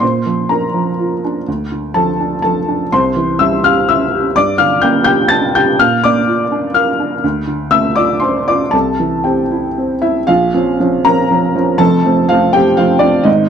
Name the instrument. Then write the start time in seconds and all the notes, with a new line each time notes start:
felt piano
0.00 A#2 C5 C6
0.26 F3
0.49 D4 A#4 A#5
0.74 F3
0.99 F4
1.24 D4
1.48 D2
1.72 D3
1.94 F3 A4 A5
2.20 D4
2.42 F3 A4 A5
2.68 D4
2.92 C2 C5 C6
3.16 E3
3.39 G3 E5 E6
3.64 G4 F5 F6
3.89 E4 E5 E6
4.14 G4
4.36 G2 D5 D6
4.58 D3 F5 F6
4.82 A#3 G5 G6
5.04 G4 G5 G6
5.28 D4 A5 A6
5.55 G4 G5 G6
5.79 A#2 F5 F6
6.04 A#3 D5 D6
6.28 F4
6.52 D4
6.74 A#4 F5 F6
7.00 D4
7.24 D2
7.47 D3
7.71 A3 E5 E6
7.95 F4 D5 D6
8.20 D4 C5 C6
8.48 F4 D5 D6
8.71 C2 A4 A5
9.00 E3
9.24 C4 G4 G5
9.51 E4
9.78 C4
10.02 E4 E5
10.27 A#1 F4 F5
10.54 F3 C4 C#4
10.80 F3 C4 C#4
11.05 F3 C4 C#4 A#4 A#5
11.31 F3 C4 C#4
11.55 F3 C4 C#4
11.78 F1 F2 A4 A5
12.05 F3 A3 C4
12.29 F3 A3 C4 F4 F5
12.53 F3 A3 C4 G4 G5
12.77 F3 A3 C4 F4 F5
12.99 F3 A3 C4 D4 D5
13.23 G#1 G#2 D#4 D#5